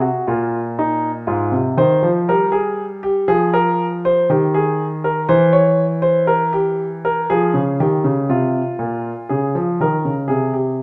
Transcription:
0.01 F#4
0.27 A#2 F4
0.79 D#4
1.27 G#2 F4
1.52 C3
1.77 D#3 C5
2.03 F3
2.29 G3 A#4
2.52 G#4
3.03 G4
3.28 F3 G#4
3.54 A#4
4.05 C5
4.30 D#3 G4
4.54 G#4
5.04 A#4
5.29 E3 C5
5.53 C#5
6.02 C5
6.27 A#4
6.53 G4
7.05 A#4
7.30 F3 G#4
7.54 C#3
7.80 D#3 G4
8.04 C#3
8.29 C3 F4
8.79 A#2
9.29 C#3 G#4
9.55 F3
9.80 D#3 A#4
10.05 C#3
10.28 C3 G#4
10.54 G4

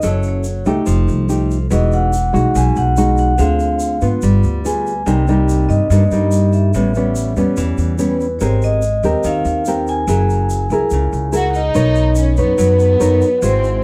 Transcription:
0.02 F#1 F#3 C#4 E4 A4, shaker
0.07 C#5
0.23 shaker
0.28 C#5
0.44 shaker
0.66 C#2 A3 D#4 G4, shaker
0.86 F1 F3, shaker
1.08 C2, shaker
1.29 A3 D#4 G4, shaker
1.51 shaker
1.70 E1 E3 G#3 D#4 F#4 D#5, shaker
1.92 F#5, shaker
2.13 shaker
2.33 B1 G#3 D#4 F#4, shaker
2.55 B1 B2 G#5, shaker
2.76 B1 F#5, shaker
2.97 G#3 D#4 F#4, shaker
3.17 F#5, shaker
3.38 D2 D3 C4 F4 G#4 F5, shaker
3.60 F5, shaker
3.80 shaker
4.01 G#2 B3 F4, shaker
4.22 G1 G3, shaker
4.43 D2, shaker
4.65 B3 F4 G#4 G#5, shaker
4.86 shaker
5.06 C2 C3 G3 A#3 D#4 G5, shaker
5.28 G3 A#3 D#4, shaker
5.49 shaker
5.69 G2 D#5, shaker
5.90 G2 G3 A#3 D#4, shaker
6.11 G2 G3 A#3 D#4, shaker
6.31 shaker
6.53 E5, shaker
6.74 A1 A2 G3 B3 C#4, shaker
6.94 G3 B3 C#4, shaker
7.15 shaker
7.36 E2 G3 B3 C#4, shaker
7.57 E2 E3, shaker
7.78 E2, shaker
7.99 G3 B3 C#4, shaker
8.20 shaker
8.39 G#1 G#3 C4 G4 A#4 C#5, shaker
8.43 C5
8.62 D#5, shaker
8.82 shaker
9.03 D#2 C4 G4 A#4, shaker
9.24 D#2 D#3 F5, shaker
9.45 D#2, shaker
9.65 C4 G4 A#4 G5, shaker
9.87 G#5, shaker
10.07 F#1 F#3 E4 G#4 A#4, shaker
10.30 shaker
10.50 shaker
10.70 C#2 E4 G#4 A#4, shaker
10.90 C#2 C#3, shaker
11.13 C#2, shaker
11.32 E4 F#4 G#4 A#4 F#5, shaker
11.54 D#4 D#5, shaker
11.75 B1 B3 D#4 A#4 C#5, shaker
11.95 shaker
12.15 C#4 C#5, shaker
12.37 F#2 B3 D#4 B4 C#5, shaker
12.58 F#2 F#3 B3 B4, shaker
12.79 shaker
13.00 F#2 D#4 A#4 C#5, shaker
13.22 shaker
13.42 G#1 G#3 C4 E4 F#4 C5, shaker
13.64 shaker

